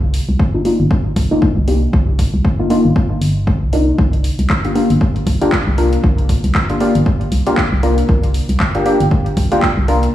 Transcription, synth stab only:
0.54 A#3 D4 D#4 F4
0.65 A#3 D4 D#4 F4
1.31 A#3 D4 D#4 F4
1.68 A#3 D4 D#4 G4
2.59 A#3 D4 D#4 F4
2.70 A#3 D4 D#4 F4
3.73 A#3 D4 D#4 F4
4.64 A#3 D4 F4 G4
4.75 A#3 D4 F4 G4
5.41 A#3 D4 F4 G4
5.78 A#3 D4 F4 A#4
6.70 A#3 D4 F4 G4
6.81 A#3 D4 F4 G4
7.47 A#3 D4 F4 G4
7.83 A#3 D4 F4 A#4
8.75 A#3 D4 F4 G4
8.86 A#3 D4 F4 G4
9.52 A#3 D4 F4 G4
9.88 A#3 D4 F4 A#4

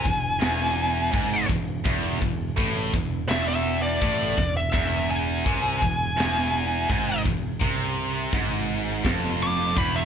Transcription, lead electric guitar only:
Already playing: G#5
3.29 E5
3.49 E5
3.82 D5
4.57 E5
4.72 E5
5.11 G#5
9.43 D6
9.78 B5
9.96 E5

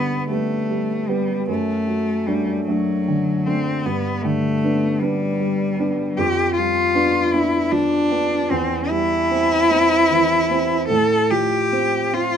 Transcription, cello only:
Already playing: B3
0.31 A3
1.09 G3
1.50 A3
2.27 G3
2.67 F#3
3.46 C4
3.85 B3
4.22 A3
5.00 G3
6.17 G4
6.56 F4
7.33 E4
7.71 D4
8.51 C4
8.90 E4
10.88 A4
11.31 G4
12.14 F4

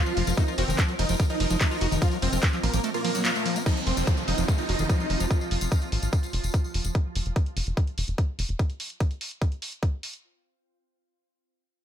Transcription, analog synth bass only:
0.17 F1
0.27 F1
0.58 F1
0.68 F1
0.99 F1
1.09 F1
1.40 F1
1.50 F1
1.81 F1
1.91 F1
2.22 F1
2.33 F1
2.63 A1
2.74 A1
3.87 F1
3.97 F1
4.28 F1
4.38 F1
4.69 F1
4.79 F1
5.10 F1
5.20 F1
5.51 F1
5.61 F1
5.92 A1
6.03 A1
6.33 F1
6.44 F1
6.74 F1
6.85 F1
7.16 F1
7.26 F1
7.57 F1
7.67 F1
7.98 F1
8.08 F1
8.39 F1
8.49 F1

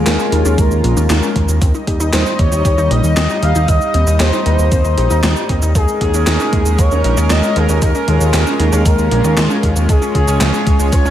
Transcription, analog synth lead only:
Already playing: G#4
0.58 A#4
2.13 C5
2.39 C#5
2.91 D#5
3.16 D#5
3.42 F5
3.68 D#5
4.20 C5
4.46 C5
5.75 G#4
6.01 G#4
6.79 C#5
7.31 D#5
7.57 G#4
7.83 A#4
8.08 G#4
8.86 A#4
9.89 G#4
10.15 G#4
10.93 C#5

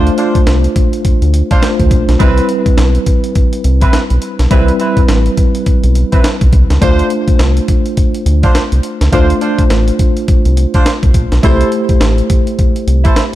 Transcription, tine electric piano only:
Already playing: A3 D4 F4 C5
1.62 A3 D4 F4 C5
2.20 G3 C4 E4 B4
4.51 G3 C4 E4 B4
6.81 A3 D4 F4 C5
9.12 A3 D4 F4 C5
11.43 A3 E4 G4 C5

